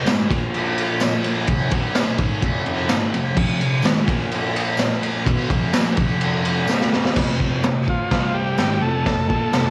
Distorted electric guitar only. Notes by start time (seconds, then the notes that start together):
0.05 G#2 D#3 G#3
0.29 A#2 F3 A#3
1.47 F2 C3
1.70 B2 F#3 B3
2.17 G#2 D#3 G#3
2.42 F2 C3
2.66 F2 C3 F3
2.88 G#2 D#3 G#3
3.13 F2 C3
3.35 F2 C3 F3
3.60 F2 C3
3.83 G#2 D#3 G#3
4.07 A#2 F3 A#3
5.25 B2 F#3 B3
5.48 F2 C3 F3
5.72 A#2 F3 A#3
5.96 F2 C3 F3
6.67 C3 G3 C4
7.15 F2 C3 F3
7.63 F2 C3
8.10 C3 G3 C4
8.58 G#2 D#3 G#3
8.81 F2 C3 F3
9.05 F2 C3
9.29 A#2 F3 A#3
9.52 F2 C3